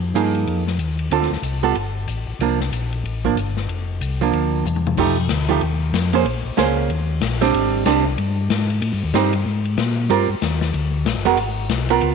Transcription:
0.00 0.14 F2 medium
0.14 0.46 G2 medium
0.14 0.63 F3 medium
0.14 0.63 A#3 soft
0.14 0.63 D#4 medium
0.14 0.63 G#4 medium
0.14 hi-hat pedal medium
0.14 ride medium
0.35 ride soft
0.47 0.79 F2 medium
0.47 ride soft
0.67 snare soft
0.78 1.10 D#2 medium
0.78 hi-hat pedal soft
0.78 ride medium
0.99 ride soft
1.11 1.29 D2 medium
1.11 1.30 D3 medium
1.11 1.30 C4 medium
1.11 1.30 F4 medium
1.11 1.30 A4 medium
1.11 ride medium
1.22 snare soft
1.31 1.37 D2 soft
1.31 snare soft
1.42 1.74 C2 medium
1.42 hi-hat pedal medium
1.42 ride medium
1.63 1.75 G3 soft
1.63 1.75 B3 medium
1.63 1.75 F4 soft
1.63 1.75 A4 medium
1.75 2.07 G1 medium
1.75 ride soft
2.08 2.26 A1 medium
2.08 hi-hat pedal medium
2.08 ride medium
2.27 2.34 A1 soft
2.39 2.71 C2 medium
2.39 2.58 F3 medium
2.39 2.59 A#3 medium
2.39 2.59 D4 medium
2.39 ride medium
2.61 snare soft
2.72 3.03 A#1 medium
2.72 hi-hat pedal soft
2.72 ride medium
2.92 ride soft
3.04 3.35 A1 medium
3.04 ride soft
3.25 3.36 F3 soft
3.25 3.36 A#3 medium
3.25 3.37 D4 soft
3.25 kick soft
3.36 3.68 G1 medium
3.36 hi-hat pedal medium
3.36 ride medium
3.57 snare soft
3.69 4.00 F1 medium
3.69 ride medium
4.01 4.32 C2 medium
4.01 hi-hat pedal medium
4.01 ride medium
4.21 4.63 F3 medium
4.21 4.64 A#3 medium
4.21 4.64 D4 medium
4.33 4.64 D2 medium
4.33 ride soft
4.64 4.96 E2 medium
4.64 hi-hat pedal medium
4.64 mid tom soft
4.76 mid tom soft
4.87 mid tom medium
4.97 5.28 F2 medium
4.97 5.16 F3 medium
4.97 5.16 A3 medium
4.97 5.16 D#4 medium
4.97 5.16 G4 medium
4.97 kick medium
4.97 crash medium
5.29 5.60 D2 medium
5.29 snare medium
5.29 hi-hat pedal medium
5.29 ride medium
5.49 5.60 F3 medium
5.49 5.61 A3 medium
5.49 5.61 D#4 medium
5.49 5.61 G4 medium
5.49 ride soft
5.61 5.93 D#2 medium
5.61 ride medium
5.93 6.24 F2 medium
5.93 snare medium
5.93 hi-hat pedal medium
5.93 ride medium
6.13 6.25 A#3 medium
6.13 6.25 C#4 medium
6.13 6.25 G#4 medium
6.13 6.25 C5 medium
6.13 ride soft
6.25 6.43 A#1 medium
6.25 ride medium
6.45 6.51 A#1 soft
6.57 6.89 C#2 medium
6.57 6.90 A#3 medium
6.57 6.90 C#4 medium
6.57 6.90 G#4 medium
6.57 6.90 C5 medium
6.57 snare medium
6.57 hi-hat pedal medium
6.57 ride medium
6.89 7.21 D#2 medium
6.89 ride medium
7.21 7.52 A#1 medium
7.21 snare medium
7.21 hi-hat pedal medium
7.21 ride medium
7.41 7.83 G3 medium
7.41 7.84 C4 medium
7.41 7.84 D4 medium
7.41 snare medium
7.41 ride soft
7.54 7.85 G#1 medium
7.54 ride medium
7.85 8.17 C2 medium
7.85 8.03 G3 medium
7.85 8.04 C4 medium
7.85 8.04 D4 medium
7.85 snare medium
7.85 hi-hat pedal medium
7.85 ride medium
8.18 8.49 G2 medium
8.18 ride medium
8.50 8.81 G#2 medium
8.50 snare medium
8.50 hi-hat pedal medium
8.50 ride medium
8.70 ride soft
8.82 8.92 A2 medium
8.82 ride medium
8.93 9.04 G2 medium
9.03 9.13 D#2 medium
9.14 9.45 G2 medium
9.14 9.32 G3 medium
9.14 9.32 C4 medium
9.14 9.32 D#4 medium
9.14 snare medium
9.14 hi-hat pedal medium
9.14 ride medium
9.33 ride medium
9.46 9.77 G#2 medium
9.65 ride soft
9.78 10.09 A#2 medium
9.78 snare medium
9.78 hi-hat pedal medium
9.78 ride medium
10.09 10.28 G2 medium
10.09 10.28 G3 medium
10.09 10.28 C4 medium
10.09 10.28 F4 medium
10.09 10.28 A#4 medium
10.09 ride medium
10.29 10.35 G2 soft
10.42 10.73 D#2 medium
10.42 snare medium
10.42 hi-hat pedal medium
10.42 ride medium
10.61 snare soft
10.74 11.05 D2 medium
10.74 ride medium
11.05 11.16 A#1 medium
11.05 snare medium
11.05 hi-hat pedal medium
11.05 ride medium
11.17 11.27 G1 medium
11.25 11.37 F1 medium
11.25 11.37 G#3 medium
11.25 11.37 B3 medium
11.25 11.37 F#4 medium
11.25 11.37 A#4 medium
11.25 ride soft
11.37 11.69 G#1 medium
11.37 ride medium
11.69 12.00 B1 medium
11.69 snare medium
11.69 hi-hat pedal medium
11.69 ride medium
11.89 12.15 B3 medium
11.89 12.15 F4 medium
11.89 12.15 A#4 medium
11.89 ride soft
12.01 12.15 C#2 medium
12.01 ride medium

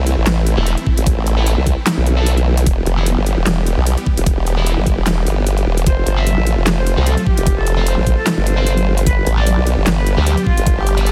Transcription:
0.00 0.16 C2 loud
0.00 5.83 E3 medium
0.00 2.63 A3 medium
0.00 2.63 C4 medium
0.00 2.63 E4 medium
0.07 closed hi-hat medium
0.18 0.25 A1 loud
0.26 0.56 A1 loud
0.26 snare loud
0.26 clap loud
0.26 closed hi-hat medium
0.47 closed hi-hat medium
0.57 0.76 E1 loud
0.57 0.71 A3 medium
0.57 0.71 E4 medium
0.57 0.71 A4 medium
0.67 closed hi-hat medium
0.77 closed hi-hat soft
0.87 kick medium
0.97 1.16 A1 loud
0.97 closed hi-hat medium
1.07 kick loud
1.07 closed hi-hat medium
1.17 1.56 A1 medium
1.27 closed hi-hat medium
1.37 1.51 A3 medium
1.37 1.51 E4 medium
1.37 1.51 A4 loud
1.46 closed hi-hat medium
1.57 1.76 C2 loud
1.67 kick medium
1.67 closed hi-hat medium
1.87 snare loud
1.87 clap loud
1.87 closed hi-hat medium
1.97 2.65 B1 loud
2.06 closed hi-hat medium
2.17 2.31 A3 medium
2.17 2.31 E4 medium
2.17 2.31 A4 loud
2.26 closed hi-hat medium
2.37 closed hi-hat soft
2.57 closed hi-hat medium
2.66 2.85 E1 medium
2.66 5.83 G3 medium
2.66 5.83 B3 medium
2.66 5.83 G4 medium
2.66 kick loud
2.66 closed hi-hat medium
2.86 3.16 F1 loud
2.86 closed hi-hat medium
2.97 3.05 E3 medium
2.97 3.05 B3 medium
2.97 3.05 E4 loud
3.06 closed hi-hat medium
3.18 3.36 G1 loud
3.26 closed hi-hat medium
3.37 3.45 E1 loud
3.46 3.76 E1 loud
3.46 snare loud
3.46 clap medium
3.46 closed hi-hat medium
3.67 closed hi-hat medium
3.77 3.96 B1 medium
3.87 closed hi-hat medium
3.97 closed hi-hat soft
4.06 kick medium
4.17 4.36 E1 loud
4.17 closed hi-hat medium
4.26 kick loud
4.26 closed hi-hat medium
4.37 4.76 E1 loud
4.47 closed hi-hat soft
4.57 4.71 E3 medium
4.57 4.71 B3 medium
4.57 4.71 E4 loud
4.66 closed hi-hat medium
4.77 4.96 G1 loud
4.86 kick medium
4.86 closed hi-hat medium
4.97 5.25 E1 loud
5.07 snare loud
5.07 clap loud
5.07 closed hi-hat medium
5.26 5.65 G1 loud
5.26 closed hi-hat soft
5.47 closed hi-hat medium
5.58 closed hi-hat soft
5.67 5.85 E1 loud
5.77 closed hi-hat medium
5.87 6.05 F1 medium
5.87 9.03 C3 medium
5.87 9.03 F3 medium
5.87 9.03 A3 medium
5.87 9.03 F4 medium
5.87 6.04 C5 loud
5.87 kick loud
5.87 closed hi-hat medium
6.07 6.36 G1 loud
6.07 closed hi-hat medium
6.17 6.25 F3 medium
6.17 6.25 C4 medium
6.17 6.25 F4 loud
6.17 6.35 E5 medium
6.27 closed hi-hat medium
6.37 6.56 A1 loud
6.47 closed hi-hat medium
6.57 6.65 F1 loud
6.66 6.96 F1 loud
6.66 snare loud
6.66 clap medium
6.66 closed hi-hat medium
6.78 6.95 C5 loud
6.87 closed hi-hat medium
6.97 7.16 C2 loud
6.97 7.11 F3 medium
6.97 7.11 C4 medium
6.97 7.11 F4 medium
7.06 7.19 A4 medium
7.06 closed hi-hat medium
7.17 closed hi-hat soft
7.27 7.44 G4 loud
7.27 kick medium
7.37 7.56 F1 loud
7.37 closed hi-hat medium
7.47 kick loud
7.47 closed hi-hat medium
7.57 7.96 F1 loud
7.57 7.75 A4 loud
7.67 closed hi-hat medium
7.77 7.91 F3 medium
7.77 7.91 C4 medium
7.77 7.91 F4 loud
7.87 8.04 C5 loud
7.87 closed hi-hat medium
7.97 8.16 A1 loud
8.07 kick medium
8.07 closed hi-hat medium
8.18 8.35 A4 loud
8.27 snare loud
8.27 clap medium
8.27 closed hi-hat medium
8.37 9.05 G1 loud
8.47 8.99 C5 loud
8.47 closed hi-hat medium
8.57 8.71 F3 medium
8.57 8.71 C4 medium
8.57 8.71 F4 loud
8.67 closed hi-hat medium
8.77 closed hi-hat soft
8.97 closed hi-hat medium
9.06 9.25 G1 medium
9.06 11.12 D3 medium
9.06 11.12 G3 medium
9.06 11.12 B3 medium
9.06 11.12 G4 medium
9.06 9.24 B4 medium
9.06 kick loud
9.06 closed hi-hat medium
9.27 9.56 A1 loud
9.27 closed hi-hat medium
9.37 9.45 G3 medium
9.37 9.45 D4 medium
9.37 9.45 G4 medium
9.37 9.55 D5 loud
9.47 closed hi-hat medium
9.57 9.76 B1 loud
9.67 closed hi-hat medium
9.78 9.85 G1 loud
9.87 10.16 G1 loud
9.87 snare loud
9.87 clap medium
9.87 closed hi-hat medium
9.97 10.15 B4 loud
10.07 closed hi-hat medium
10.17 10.36 D2 loud
10.17 10.31 G3 medium
10.17 10.31 D4 medium
10.17 10.31 G4 medium
10.26 10.39 G4 medium
10.26 closed hi-hat medium
10.37 closed hi-hat soft
10.46 10.64 F4 medium
10.46 kick medium
10.57 10.76 G1 loud
10.57 closed hi-hat medium
10.67 kick loud
10.67 closed hi-hat medium
10.77 11.12 G1 loud
10.77 10.95 G4 loud
10.87 closed hi-hat medium
10.97 11.11 G3 medium
10.97 11.11 D4 medium
10.97 11.11 G4 loud
10.97 closed hi-hat soft
11.06 11.12 A4 loud
11.06 closed hi-hat medium

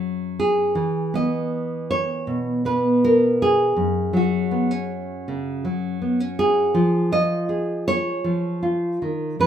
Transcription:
0.00 0.76 F#2 medium
0.00 0.76 F#3 medium
0.00 0.76 A#4 medium
0.40 1.15 G#4 medium
0.75 3.72 E3 medium
1.14 2.64 B3 medium
1.14 1.90 D#5 medium
1.91 2.65 C#5 loud
2.27 3.72 B2 medium
2.65 3.72 B3 medium
2.65 3.40 B4 medium
3.04 3.78 A#4 loud
3.42 4.90 G#4 loud
3.76 6.74 F#2 medium
4.13 5.63 F#3 medium
4.13 6.76 F#4 medium
4.51 4.71 B3 soft
4.71 6.01 C#4 soft
5.28 5.64 C#3 medium
5.65 6.75 F#3 medium
6.02 6.20 B3 soft
6.20 6.75 C#4 soft
6.39 7.12 G#4 medium
6.74 8.23 F3 medium
7.12 8.61 F4 medium
7.12 7.87 D#5 loud
7.49 9.47 G#4 medium
7.88 9.39 C#5 loud
8.24 9.00 F3 medium
8.63 9.47 F4 medium
9.02 9.39 D#3 medium
9.39 9.47 F3 medium
9.39 9.47 B4 medium

